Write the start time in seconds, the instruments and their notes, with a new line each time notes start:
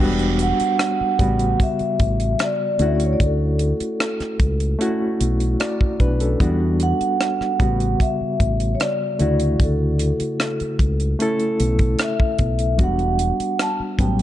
Already playing: reed electric piano G3
0.00 fingered electric bass E1, reed electric piano B3 D4 F#4
0.19 closed hi-hat
0.39 vibraphone F#5, closed hi-hat
0.60 muted fingered electric bass stroke, closed hi-hat
0.79 cross-stick, closed hi-hat
1.01 muted fingered electric bass stroke
1.19 fingered electric bass A1, reed electric piano C#3 G3 B3 F#4, kick, closed hi-hat
1.39 closed hi-hat
1.60 vibraphone E5, kick, closed hi-hat
1.79 muted fingered electric bass stroke, closed hi-hat
2.00 fingered electric bass A1, kick, closed hi-hat
2.20 closed hi-hat
2.39 cross-stick, closed hi-hat
2.44 vibraphone D5
2.79 fingered electric bass D2, reed electric piano A3 C#4 E4 F#4, closed hi-hat
2.86 vibraphone E5
2.95 vibraphone D5
3.00 closed hi-hat
3.04 vibraphone C#5
3.13 vibraphone D5
3.20 fingered electric bass D2, kick, closed hi-hat
3.26 vibraphone A4
3.59 closed hi-hat
3.80 muted fingered electric bass stroke, closed hi-hat
4.00 cross-stick, closed hi-hat
4.20 muted fingered electric bass stroke, cross-stick, closed hi-hat
4.40 fingered electric bass C#2, kick, closed hi-hat
4.60 closed hi-hat
4.79 reed electric piano A3 C#4 E4 F#4, closed hi-hat
5.21 fingered electric bass B1, closed hi-hat
5.40 closed hi-hat
5.60 reed electric piano F#4 D5, cross-stick, closed hi-hat
5.81 kick
6.00 fingered electric bass B1, reed electric piano D4 B4, kick, closed hi-hat
6.20 reed electric piano C#4 A4, closed hi-hat
6.39 fingered electric bass E2, reed electric piano F#3 B3 D4 F#4, kick, closed hi-hat
6.45 reed electric piano G3
6.80 vibraphone F#5, closed hi-hat
7.01 muted fingered electric bass stroke, closed hi-hat
7.21 cross-stick, closed hi-hat
7.41 muted fingered electric bass stroke, cross-stick
7.59 fingered electric bass A1, reed electric piano C#3 G3 B3 F#4, kick, closed hi-hat
7.80 closed hi-hat
8.00 vibraphone E5, kick, closed hi-hat
8.21 muted fingered electric bass stroke
8.40 fingered electric bass A1, kick, closed hi-hat
8.60 closed hi-hat
8.75 vibraphone C#5
8.80 vibraphone D5, cross-stick, closed hi-hat
9.19 fingered electric bass D2, reed electric piano C#3 A3 E4 F#4, closed hi-hat
9.40 closed hi-hat
9.60 fingered electric bass D2, vibraphone A4, kick, closed hi-hat
9.99 closed hi-hat
10.20 muted fingered electric bass stroke, closed hi-hat
10.40 cross-stick, closed hi-hat
10.60 muted fingered electric bass stroke, closed hi-hat
10.79 fingered electric bass C#2, kick, closed hi-hat
11.00 closed hi-hat
11.19 reed electric piano A3 C#4 E4 A4, closed hi-hat
11.39 closed hi-hat
11.60 fingered electric bass B1, closed hi-hat
11.79 kick, closed hi-hat
11.99 cross-stick, closed hi-hat
12.03 vibraphone E5
12.20 kick
12.38 fingered electric bass B1, kick, closed hi-hat
12.59 closed hi-hat
12.77 fingered electric bass E1, reed electric piano F#3 B3 D4 F#4, kick, closed hi-hat
12.84 reed electric piano G3, vibraphone F#5
12.99 closed hi-hat
13.19 closed hi-hat
13.40 muted fingered electric bass stroke, closed hi-hat
13.59 vibraphone A5, cross-stick, closed hi-hat
13.80 muted fingered electric bass stroke
13.98 fingered electric bass A1, reed electric piano F#3 G3 B3 C#4, vibraphone G5, kick, closed hi-hat